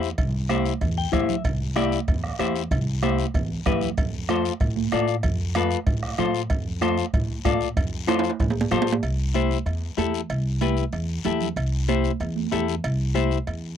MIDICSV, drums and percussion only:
0, 0, Header, 1, 3, 480
1, 0, Start_track
1, 0, Key_signature, 0, "major"
1, 0, Tempo, 316289
1, 279, Time_signature, 4, 2, 24, 8
1, 20897, End_track
2, 0, Start_track
2, 0, Title_t, "Two-headed folk drums"
2, 274, Note_on_c, 9, 36, 75
2, 426, Note_off_c, 9, 36, 0
2, 750, Note_on_c, 9, 37, 83
2, 902, Note_off_c, 9, 37, 0
2, 1235, Note_on_c, 9, 36, 74
2, 1387, Note_off_c, 9, 36, 0
2, 1715, Note_on_c, 9, 36, 66
2, 1718, Note_on_c, 9, 37, 77
2, 1867, Note_off_c, 9, 36, 0
2, 1870, Note_off_c, 9, 37, 0
2, 2196, Note_on_c, 9, 36, 81
2, 2347, Note_off_c, 9, 36, 0
2, 2676, Note_on_c, 9, 37, 88
2, 2828, Note_off_c, 9, 37, 0
2, 3156, Note_on_c, 9, 36, 73
2, 3308, Note_off_c, 9, 36, 0
2, 3394, Note_on_c, 9, 37, 66
2, 3546, Note_off_c, 9, 37, 0
2, 3634, Note_on_c, 9, 37, 79
2, 3786, Note_off_c, 9, 37, 0
2, 4115, Note_on_c, 9, 36, 79
2, 4266, Note_off_c, 9, 36, 0
2, 4593, Note_on_c, 9, 37, 84
2, 4745, Note_off_c, 9, 37, 0
2, 5075, Note_on_c, 9, 36, 77
2, 5227, Note_off_c, 9, 36, 0
2, 5555, Note_on_c, 9, 36, 68
2, 5555, Note_on_c, 9, 37, 83
2, 5706, Note_off_c, 9, 37, 0
2, 5707, Note_off_c, 9, 36, 0
2, 6035, Note_on_c, 9, 36, 76
2, 6187, Note_off_c, 9, 36, 0
2, 6507, Note_on_c, 9, 37, 91
2, 6659, Note_off_c, 9, 37, 0
2, 6989, Note_on_c, 9, 36, 74
2, 7141, Note_off_c, 9, 36, 0
2, 7470, Note_on_c, 9, 37, 81
2, 7622, Note_off_c, 9, 37, 0
2, 7945, Note_on_c, 9, 36, 72
2, 8097, Note_off_c, 9, 36, 0
2, 8423, Note_on_c, 9, 37, 86
2, 8575, Note_off_c, 9, 37, 0
2, 8905, Note_on_c, 9, 36, 80
2, 9057, Note_off_c, 9, 36, 0
2, 9148, Note_on_c, 9, 37, 67
2, 9300, Note_off_c, 9, 37, 0
2, 9386, Note_on_c, 9, 37, 82
2, 9538, Note_off_c, 9, 37, 0
2, 9868, Note_on_c, 9, 36, 74
2, 10020, Note_off_c, 9, 36, 0
2, 10349, Note_on_c, 9, 37, 89
2, 10501, Note_off_c, 9, 37, 0
2, 10830, Note_on_c, 9, 36, 81
2, 10982, Note_off_c, 9, 36, 0
2, 11307, Note_on_c, 9, 36, 76
2, 11307, Note_on_c, 9, 37, 80
2, 11458, Note_off_c, 9, 36, 0
2, 11459, Note_off_c, 9, 37, 0
2, 11787, Note_on_c, 9, 36, 74
2, 11939, Note_off_c, 9, 36, 0
2, 12267, Note_on_c, 9, 37, 88
2, 12419, Note_off_c, 9, 37, 0
2, 12746, Note_on_c, 9, 36, 80
2, 12897, Note_off_c, 9, 36, 0
2, 13226, Note_on_c, 9, 37, 86
2, 13378, Note_off_c, 9, 37, 0
2, 20897, End_track
3, 0, Start_track
3, 0, Title_t, "Drums"
3, 44, Note_on_c, 9, 73, 68
3, 196, Note_off_c, 9, 73, 0
3, 273, Note_on_c, 9, 56, 96
3, 283, Note_on_c, 9, 74, 69
3, 425, Note_off_c, 9, 56, 0
3, 434, Note_off_c, 9, 74, 0
3, 753, Note_on_c, 9, 73, 60
3, 756, Note_on_c, 9, 56, 60
3, 756, Note_on_c, 9, 63, 82
3, 905, Note_off_c, 9, 73, 0
3, 908, Note_off_c, 9, 56, 0
3, 908, Note_off_c, 9, 63, 0
3, 996, Note_on_c, 9, 73, 64
3, 1147, Note_off_c, 9, 73, 0
3, 1232, Note_on_c, 9, 74, 76
3, 1236, Note_on_c, 9, 56, 81
3, 1384, Note_off_c, 9, 74, 0
3, 1388, Note_off_c, 9, 56, 0
3, 1717, Note_on_c, 9, 63, 80
3, 1717, Note_on_c, 9, 64, 75
3, 1719, Note_on_c, 9, 73, 67
3, 1722, Note_on_c, 9, 56, 66
3, 1869, Note_off_c, 9, 63, 0
3, 1869, Note_off_c, 9, 64, 0
3, 1871, Note_off_c, 9, 73, 0
3, 1873, Note_off_c, 9, 56, 0
3, 1956, Note_on_c, 9, 64, 68
3, 1957, Note_on_c, 9, 73, 71
3, 2108, Note_off_c, 9, 64, 0
3, 2109, Note_off_c, 9, 73, 0
3, 2192, Note_on_c, 9, 74, 76
3, 2197, Note_on_c, 9, 56, 103
3, 2344, Note_off_c, 9, 74, 0
3, 2349, Note_off_c, 9, 56, 0
3, 2671, Note_on_c, 9, 56, 69
3, 2679, Note_on_c, 9, 63, 83
3, 2680, Note_on_c, 9, 73, 66
3, 2823, Note_off_c, 9, 56, 0
3, 2831, Note_off_c, 9, 63, 0
3, 2832, Note_off_c, 9, 73, 0
3, 2919, Note_on_c, 9, 73, 67
3, 3071, Note_off_c, 9, 73, 0
3, 3155, Note_on_c, 9, 74, 71
3, 3158, Note_on_c, 9, 56, 88
3, 3307, Note_off_c, 9, 74, 0
3, 3310, Note_off_c, 9, 56, 0
3, 3636, Note_on_c, 9, 63, 72
3, 3636, Note_on_c, 9, 73, 69
3, 3645, Note_on_c, 9, 56, 63
3, 3787, Note_off_c, 9, 63, 0
3, 3788, Note_off_c, 9, 73, 0
3, 3797, Note_off_c, 9, 56, 0
3, 3879, Note_on_c, 9, 73, 66
3, 4031, Note_off_c, 9, 73, 0
3, 4113, Note_on_c, 9, 74, 69
3, 4122, Note_on_c, 9, 56, 105
3, 4264, Note_off_c, 9, 74, 0
3, 4274, Note_off_c, 9, 56, 0
3, 4591, Note_on_c, 9, 73, 64
3, 4597, Note_on_c, 9, 56, 65
3, 4597, Note_on_c, 9, 63, 92
3, 4743, Note_off_c, 9, 73, 0
3, 4749, Note_off_c, 9, 56, 0
3, 4749, Note_off_c, 9, 63, 0
3, 4833, Note_on_c, 9, 73, 67
3, 4984, Note_off_c, 9, 73, 0
3, 5075, Note_on_c, 9, 74, 71
3, 5082, Note_on_c, 9, 56, 89
3, 5227, Note_off_c, 9, 74, 0
3, 5234, Note_off_c, 9, 56, 0
3, 5547, Note_on_c, 9, 73, 72
3, 5557, Note_on_c, 9, 63, 75
3, 5557, Note_on_c, 9, 64, 79
3, 5559, Note_on_c, 9, 56, 65
3, 5699, Note_off_c, 9, 73, 0
3, 5709, Note_off_c, 9, 63, 0
3, 5709, Note_off_c, 9, 64, 0
3, 5711, Note_off_c, 9, 56, 0
3, 5788, Note_on_c, 9, 73, 73
3, 5799, Note_on_c, 9, 64, 69
3, 5939, Note_off_c, 9, 73, 0
3, 5951, Note_off_c, 9, 64, 0
3, 6032, Note_on_c, 9, 74, 71
3, 6037, Note_on_c, 9, 56, 101
3, 6183, Note_off_c, 9, 74, 0
3, 6189, Note_off_c, 9, 56, 0
3, 6509, Note_on_c, 9, 63, 82
3, 6512, Note_on_c, 9, 56, 65
3, 6514, Note_on_c, 9, 73, 64
3, 6661, Note_off_c, 9, 63, 0
3, 6664, Note_off_c, 9, 56, 0
3, 6665, Note_off_c, 9, 73, 0
3, 6758, Note_on_c, 9, 73, 70
3, 6910, Note_off_c, 9, 73, 0
3, 6982, Note_on_c, 9, 74, 68
3, 6992, Note_on_c, 9, 56, 85
3, 7134, Note_off_c, 9, 74, 0
3, 7144, Note_off_c, 9, 56, 0
3, 7232, Note_on_c, 9, 63, 79
3, 7384, Note_off_c, 9, 63, 0
3, 7463, Note_on_c, 9, 73, 64
3, 7465, Note_on_c, 9, 56, 67
3, 7473, Note_on_c, 9, 63, 80
3, 7615, Note_off_c, 9, 73, 0
3, 7617, Note_off_c, 9, 56, 0
3, 7624, Note_off_c, 9, 63, 0
3, 7704, Note_on_c, 9, 73, 71
3, 7856, Note_off_c, 9, 73, 0
3, 7940, Note_on_c, 9, 56, 103
3, 7955, Note_on_c, 9, 74, 76
3, 8091, Note_off_c, 9, 56, 0
3, 8107, Note_off_c, 9, 74, 0
3, 8422, Note_on_c, 9, 56, 74
3, 8423, Note_on_c, 9, 73, 72
3, 8429, Note_on_c, 9, 63, 88
3, 8574, Note_off_c, 9, 56, 0
3, 8575, Note_off_c, 9, 73, 0
3, 8581, Note_off_c, 9, 63, 0
3, 8661, Note_on_c, 9, 73, 75
3, 8812, Note_off_c, 9, 73, 0
3, 8901, Note_on_c, 9, 74, 73
3, 8902, Note_on_c, 9, 56, 84
3, 9053, Note_off_c, 9, 74, 0
3, 9054, Note_off_c, 9, 56, 0
3, 9380, Note_on_c, 9, 56, 64
3, 9390, Note_on_c, 9, 63, 76
3, 9390, Note_on_c, 9, 64, 83
3, 9390, Note_on_c, 9, 73, 68
3, 9531, Note_off_c, 9, 56, 0
3, 9542, Note_off_c, 9, 63, 0
3, 9542, Note_off_c, 9, 64, 0
3, 9542, Note_off_c, 9, 73, 0
3, 9630, Note_on_c, 9, 73, 73
3, 9782, Note_off_c, 9, 73, 0
3, 9863, Note_on_c, 9, 56, 96
3, 9864, Note_on_c, 9, 74, 71
3, 10014, Note_off_c, 9, 56, 0
3, 10016, Note_off_c, 9, 74, 0
3, 10345, Note_on_c, 9, 73, 73
3, 10349, Note_on_c, 9, 56, 65
3, 10349, Note_on_c, 9, 63, 83
3, 10497, Note_off_c, 9, 73, 0
3, 10501, Note_off_c, 9, 56, 0
3, 10501, Note_off_c, 9, 63, 0
3, 10586, Note_on_c, 9, 73, 72
3, 10737, Note_off_c, 9, 73, 0
3, 10830, Note_on_c, 9, 74, 74
3, 10833, Note_on_c, 9, 56, 90
3, 10982, Note_off_c, 9, 74, 0
3, 10985, Note_off_c, 9, 56, 0
3, 11306, Note_on_c, 9, 63, 79
3, 11312, Note_on_c, 9, 73, 67
3, 11316, Note_on_c, 9, 56, 66
3, 11458, Note_off_c, 9, 63, 0
3, 11464, Note_off_c, 9, 73, 0
3, 11468, Note_off_c, 9, 56, 0
3, 11545, Note_on_c, 9, 73, 69
3, 11697, Note_off_c, 9, 73, 0
3, 11787, Note_on_c, 9, 74, 80
3, 11790, Note_on_c, 9, 56, 109
3, 11939, Note_off_c, 9, 74, 0
3, 11942, Note_off_c, 9, 56, 0
3, 12263, Note_on_c, 9, 73, 74
3, 12266, Note_on_c, 9, 63, 84
3, 12269, Note_on_c, 9, 56, 68
3, 12269, Note_on_c, 9, 65, 80
3, 12414, Note_off_c, 9, 73, 0
3, 12418, Note_off_c, 9, 63, 0
3, 12421, Note_off_c, 9, 56, 0
3, 12421, Note_off_c, 9, 65, 0
3, 12431, Note_on_c, 9, 65, 104
3, 12501, Note_on_c, 9, 73, 75
3, 12583, Note_off_c, 9, 65, 0
3, 12587, Note_on_c, 9, 65, 80
3, 12653, Note_off_c, 9, 73, 0
3, 12739, Note_off_c, 9, 65, 0
3, 12742, Note_on_c, 9, 74, 70
3, 12749, Note_on_c, 9, 56, 84
3, 12749, Note_on_c, 9, 65, 69
3, 12894, Note_off_c, 9, 74, 0
3, 12901, Note_off_c, 9, 56, 0
3, 12901, Note_off_c, 9, 65, 0
3, 12905, Note_on_c, 9, 66, 92
3, 13057, Note_off_c, 9, 66, 0
3, 13065, Note_on_c, 9, 66, 91
3, 13216, Note_off_c, 9, 66, 0
3, 13222, Note_on_c, 9, 56, 65
3, 13222, Note_on_c, 9, 66, 72
3, 13224, Note_on_c, 9, 63, 79
3, 13224, Note_on_c, 9, 64, 80
3, 13228, Note_on_c, 9, 73, 63
3, 13374, Note_off_c, 9, 56, 0
3, 13374, Note_off_c, 9, 66, 0
3, 13376, Note_off_c, 9, 63, 0
3, 13376, Note_off_c, 9, 64, 0
3, 13379, Note_off_c, 9, 73, 0
3, 13383, Note_on_c, 9, 66, 101
3, 13463, Note_on_c, 9, 73, 78
3, 13535, Note_off_c, 9, 66, 0
3, 13544, Note_on_c, 9, 66, 95
3, 13615, Note_off_c, 9, 73, 0
3, 13696, Note_off_c, 9, 66, 0
3, 13702, Note_on_c, 9, 74, 77
3, 13703, Note_on_c, 9, 56, 103
3, 13854, Note_off_c, 9, 56, 0
3, 13854, Note_off_c, 9, 74, 0
3, 14185, Note_on_c, 9, 63, 86
3, 14189, Note_on_c, 9, 73, 61
3, 14191, Note_on_c, 9, 56, 68
3, 14337, Note_off_c, 9, 63, 0
3, 14341, Note_off_c, 9, 73, 0
3, 14343, Note_off_c, 9, 56, 0
3, 14433, Note_on_c, 9, 73, 66
3, 14585, Note_off_c, 9, 73, 0
3, 14665, Note_on_c, 9, 56, 79
3, 14676, Note_on_c, 9, 74, 64
3, 14817, Note_off_c, 9, 56, 0
3, 14828, Note_off_c, 9, 74, 0
3, 15147, Note_on_c, 9, 63, 79
3, 15149, Note_on_c, 9, 56, 66
3, 15149, Note_on_c, 9, 66, 66
3, 15154, Note_on_c, 9, 73, 67
3, 15299, Note_off_c, 9, 63, 0
3, 15300, Note_off_c, 9, 56, 0
3, 15300, Note_off_c, 9, 66, 0
3, 15306, Note_off_c, 9, 73, 0
3, 15393, Note_on_c, 9, 73, 78
3, 15545, Note_off_c, 9, 73, 0
3, 15627, Note_on_c, 9, 74, 70
3, 15631, Note_on_c, 9, 56, 100
3, 15779, Note_off_c, 9, 74, 0
3, 15782, Note_off_c, 9, 56, 0
3, 16104, Note_on_c, 9, 73, 65
3, 16106, Note_on_c, 9, 63, 89
3, 16109, Note_on_c, 9, 56, 70
3, 16256, Note_off_c, 9, 73, 0
3, 16258, Note_off_c, 9, 63, 0
3, 16261, Note_off_c, 9, 56, 0
3, 16341, Note_on_c, 9, 73, 72
3, 16493, Note_off_c, 9, 73, 0
3, 16580, Note_on_c, 9, 74, 75
3, 16586, Note_on_c, 9, 56, 79
3, 16732, Note_off_c, 9, 74, 0
3, 16737, Note_off_c, 9, 56, 0
3, 17065, Note_on_c, 9, 73, 64
3, 17070, Note_on_c, 9, 63, 74
3, 17070, Note_on_c, 9, 64, 75
3, 17071, Note_on_c, 9, 56, 61
3, 17217, Note_off_c, 9, 73, 0
3, 17221, Note_off_c, 9, 63, 0
3, 17221, Note_off_c, 9, 64, 0
3, 17222, Note_off_c, 9, 56, 0
3, 17309, Note_on_c, 9, 73, 74
3, 17311, Note_on_c, 9, 64, 70
3, 17460, Note_off_c, 9, 73, 0
3, 17463, Note_off_c, 9, 64, 0
3, 17547, Note_on_c, 9, 74, 74
3, 17557, Note_on_c, 9, 56, 99
3, 17699, Note_off_c, 9, 74, 0
3, 17709, Note_off_c, 9, 56, 0
3, 18033, Note_on_c, 9, 73, 68
3, 18036, Note_on_c, 9, 63, 86
3, 18038, Note_on_c, 9, 56, 65
3, 18185, Note_off_c, 9, 73, 0
3, 18188, Note_off_c, 9, 63, 0
3, 18190, Note_off_c, 9, 56, 0
3, 18274, Note_on_c, 9, 73, 71
3, 18426, Note_off_c, 9, 73, 0
3, 18515, Note_on_c, 9, 74, 68
3, 18524, Note_on_c, 9, 56, 81
3, 18667, Note_off_c, 9, 74, 0
3, 18676, Note_off_c, 9, 56, 0
3, 18761, Note_on_c, 9, 63, 75
3, 18912, Note_off_c, 9, 63, 0
3, 18997, Note_on_c, 9, 63, 75
3, 19003, Note_on_c, 9, 56, 64
3, 19003, Note_on_c, 9, 66, 67
3, 19005, Note_on_c, 9, 73, 68
3, 19149, Note_off_c, 9, 63, 0
3, 19155, Note_off_c, 9, 56, 0
3, 19155, Note_off_c, 9, 66, 0
3, 19157, Note_off_c, 9, 73, 0
3, 19250, Note_on_c, 9, 73, 71
3, 19401, Note_off_c, 9, 73, 0
3, 19488, Note_on_c, 9, 56, 111
3, 19492, Note_on_c, 9, 74, 65
3, 19639, Note_off_c, 9, 56, 0
3, 19643, Note_off_c, 9, 74, 0
3, 19963, Note_on_c, 9, 56, 71
3, 19965, Note_on_c, 9, 73, 63
3, 19966, Note_on_c, 9, 63, 79
3, 20115, Note_off_c, 9, 56, 0
3, 20117, Note_off_c, 9, 73, 0
3, 20118, Note_off_c, 9, 63, 0
3, 20203, Note_on_c, 9, 73, 65
3, 20355, Note_off_c, 9, 73, 0
3, 20446, Note_on_c, 9, 56, 79
3, 20447, Note_on_c, 9, 74, 64
3, 20597, Note_off_c, 9, 56, 0
3, 20599, Note_off_c, 9, 74, 0
3, 20897, End_track
0, 0, End_of_file